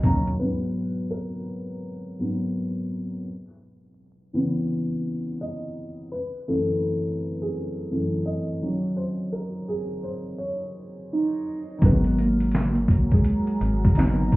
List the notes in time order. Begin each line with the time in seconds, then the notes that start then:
Already playing: F#4 A#4 D#5 G#5 A#5
0.02 D#2 D#3 F#3 A#3 A#5, kick, closed hi-hat
0.08 C#4
0.27 closed hi-hat
0.39 G#2 F#3 B3 B4
1.11 A#4
2.19 G#2 F#3 B3
4.33 C#3 E3 B3
5.41 D#5
6.12 B4
6.48 F#2 E3 A3 A4
7.42 G#4
7.91 F#2 E3 A3
8.26 D#5
8.62 D#3 F#3 C#4
8.97 C5
9.32 A#4
9.68 G#4
10.03 C5
10.38 C#5
11.13 D#4
11.78 G#1 D#3 F#3 F#4 A#4 G#5 A#5, kick, closed hi-hat
11.85 G#3 B3 A#4
12.04 closed hi-hat
12.19 A#3, closed hi-hat
12.40 closed hi-hat
12.51 snare, closed hi-hat
12.56 clap
12.75 closed hi-hat
12.88 A#1, kick, closed hi-hat
13.11 G#3, kick, closed hi-hat
13.24 closed hi-hat
13.47 closed hi-hat
13.61 G#1, closed hi-hat
13.85 kick, closed hi-hat
13.95 G#1 D#3 F#3 A#3 D#4, snare, closed hi-hat
14.00 B3, clap
14.32 G#1, kick, closed hi-hat